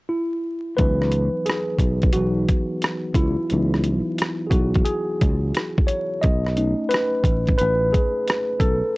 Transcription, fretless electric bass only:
0.80 1.28 C#2 loud
1.79 2.09 B1 medium
2.16 2.45 B1 medium
3.15 3.35 C#2 medium
3.52 4.00 C#2 loud
4.51 4.82 B1 medium
5.22 5.51 C#2 medium
6.24 6.73 B1 loud
7.24 7.55 A1 medium
7.61 7.90 A1 loud
8.60 8.80 B1 medium

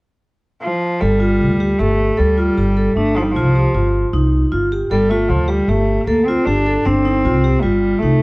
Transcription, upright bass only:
1.02 1.43 G1 medium
1.41 1.71 D2 medium
1.80 2.10 G1 medium
2.19 2.49 D2 medium
2.58 2.87 G1 medium
2.96 3.37 G1 medium
3.35 3.65 C2 medium
3.74 4.04 G1 medium
4.13 4.43 C2 medium
4.52 4.82 G1 medium
4.91 5.31 G1 medium
5.30 5.59 D2 medium
5.68 5.98 G1 medium
6.07 6.37 D2 medium
6.47 6.76 G1 medium
6.86 7.27 G1 medium
7.25 7.55 C2 medium
7.64 7.94 G1 medium
8.03 8.22 C2 medium

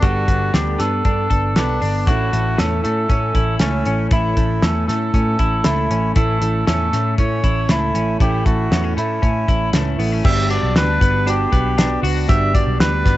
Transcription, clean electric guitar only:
0.00 2.07 G3 medium
0.00 0.27 B3 medium
0.00 0.52 D4 medium
0.00 1.30 A4 medium
0.28 0.78 B3 medium
0.53 1.04 D4 soft
0.79 1.55 B3 soft
1.05 1.80 D4 medium
1.30 2.07 A4 medium
1.56 2.12 B3 medium
1.81 2.12 D4 medium
2.07 4.10 A2 medium
2.07 3.34 E4 medium
2.33 2.83 A3 medium
2.58 3.08 C#4 soft
2.84 3.60 A3 medium
3.09 3.85 C#4 medium
3.35 4.11 E4 medium
3.61 4.36 A3 medium
3.87 4.61 C#4 medium
4.11 6.15 A2 medium
4.11 5.38 E4 medium
4.37 4.87 A3 medium
4.63 5.13 C#4 medium
4.88 5.64 A3 medium
5.14 5.89 C#4 medium
5.39 6.15 E4 medium
5.65 6.40 A3 medium
5.91 6.66 C#4 medium
6.16 8.19 A2 medium
6.16 7.43 E4 medium
6.42 6.92 A3 medium
6.67 7.17 C#4 medium
6.93 7.68 A3 soft
7.18 7.94 C#4 medium
7.44 8.20 E4 medium
7.69 8.44 A3 medium
7.95 8.71 C#4 medium
8.20 10.25 A2 medium
8.20 9.47 E4 medium
8.45 8.96 A3 medium
8.71 8.84 B3 medium
8.84 9.21 C#4 soft
8.97 9.72 A3 soft
9.22 9.99 C#4 medium
9.49 10.30 E4 medium
9.73 10.30 A3 medium
9.99 10.12 B3 medium
10.12 10.30 C#4 soft
10.25 12.28 G3 medium
10.50 11.25 D4 medium
11.01 11.52 B3 medium
11.27 11.77 D4 medium
11.52 13.05 B3 medium
11.78 12.53 D4 medium
12.03 13.17 F#4 medium
12.29 13.17 G3 medium
12.54 13.17 D4 medium
13.05 13.17 B3 medium

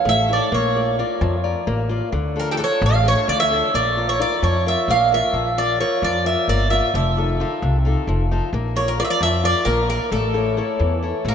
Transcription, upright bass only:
0.05 0.38 A1 medium
0.52 1.00 A#1 medium
1.21 1.53 F2 loud
1.67 1.99 A1 loud
2.12 2.61 D2 medium
2.82 3.14 A1 loud
3.28 3.60 D2 medium
3.74 4.22 A#1 medium
4.43 4.75 F2 loud
4.88 5.20 A#1 medium
5.33 5.81 A#1 medium
6.02 6.34 F2 medium
6.48 6.80 G1 medium
6.94 7.42 F1 medium
7.62 7.94 C2 loud
8.07 8.39 F1 medium
8.53 9.00 A#1 medium
9.21 9.53 F2 loud
9.66 9.98 A#1 medium
10.12 10.59 A1 medium
10.80 11.12 E2 medium
11.25 11.35 A1 medium

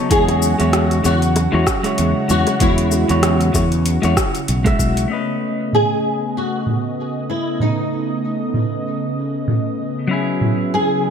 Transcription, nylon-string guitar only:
0.11 1.01 G#4 loud
1.05 1.95 F#4 loud
2.30 2.62 F#4 medium
2.61 4.44 E4 loud
5.75 6.32 G#4 medium
6.37 7.29 F#4 medium
7.30 7.62 E4 medium
7.62 9.76 D#4 medium
10.74 11.10 G#4 medium

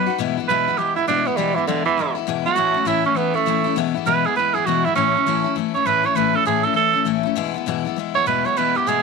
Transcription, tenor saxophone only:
0.00 0.17 B4 loud
0.48 0.79 B4 loud
0.78 0.95 G4 medium
0.96 1.07 E4 medium
1.08 1.28 D4 loud
1.27 1.38 B3 medium
1.37 1.56 G3 medium
1.55 1.66 E3 loud
1.67 1.85 D3 medium
1.86 2.15 E3 loud
2.46 2.89 F#4 loud
2.87 3.05 E4 loud
3.06 3.18 C#4 loud
3.17 3.37 B3 medium
3.35 3.75 A3 loud
4.06 4.27 B4 loud
4.26 4.36 G#4 medium
4.36 4.56 B4 medium
4.54 4.67 G#4 medium
4.66 4.86 F#4 medium
4.85 4.95 E4 loud
4.96 5.54 C#4 loud
5.75 5.88 C#5 medium
5.86 6.07 B4 loud
6.06 6.18 C#5 medium
6.16 6.37 B4 medium
6.35 6.46 A4 loud
6.47 6.66 G#4 loud
6.64 6.75 A4 medium
6.76 7.05 A4 loud
8.15 8.26 C#5 loud
8.27 8.47 B4 medium
8.46 8.59 C#5 loud
8.58 8.78 B4 medium
8.76 8.89 G4 loud
8.87 9.02 G#4 loud

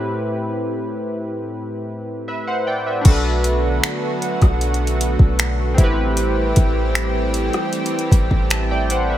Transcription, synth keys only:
0.00 2.60 A2 medium
0.00 2.61 C4 medium
0.00 2.63 E4 medium
0.00 2.64 G4 medium
0.00 2.26 B4 medium
2.28 2.46 B4 soft
2.28 2.46 E5 medium
2.47 2.66 C5 medium
2.47 2.66 F#5 medium
2.67 2.85 D5 medium
2.67 2.85 G5 medium
2.86 3.10 B4 medium
2.86 3.23 E5 medium
3.01 5.72 D4 medium
3.01 5.74 F#4 medium
3.08 5.75 A4 medium
3.08 5.77 B4 medium
5.74 8.84 C4 medium
5.74 8.85 E4 medium
5.81 8.87 G4 medium
5.81 8.11 B4 medium
8.51 8.70 E5 medium
8.51 8.70 A5 medium
8.71 8.89 D5 medium
8.71 8.89 G5 medium
8.91 9.09 C5 medium
8.91 9.09 F#5 medium
9.10 9.18 B4 medium
9.10 9.18 E5 medium

